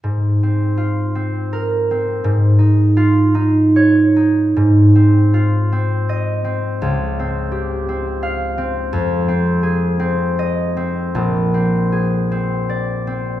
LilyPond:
\new Staff \with { instrumentName = "Harp" } { \time 6/8 \key aes \major \tempo 4. = 54 << { r2 bes'4 | r2 des''4 | r2 ees''4 | r2 f''4~ |
f''2 ees''4 | r2 d''4 | } \\ { aes,8 c'8 f'8 c'4 c'8 | aes,8 ees'8 f'8 ees'4 ees'8 | aes,8 c'8 f'8 c'4 c'8 | des,8 c'8 g'8 c'4 c'8 |
f,8 c'8 aes'8 c'4 c'8 | bes,,8 c'8 aes'8 c'4 c'8 | } >> }